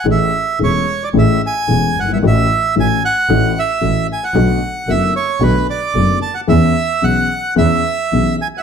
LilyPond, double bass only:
\new Staff \with { instrumentName = "Double bass" } { \clef bass \time 4/4 \key a \major \tempo 4 = 111 a,,8 r8 e,,8 r8 a,,8 r8 e,,8 g,,8 | a,,8 r8 a,,8 r8 a,,8 r8 a,,8 r8 | b,,8 r8 fis,,8 r8 b,,8 r8 fis,,8 r8 | e,8 r8 b,,8 r8 e,8 r8 b,,8 r8 | }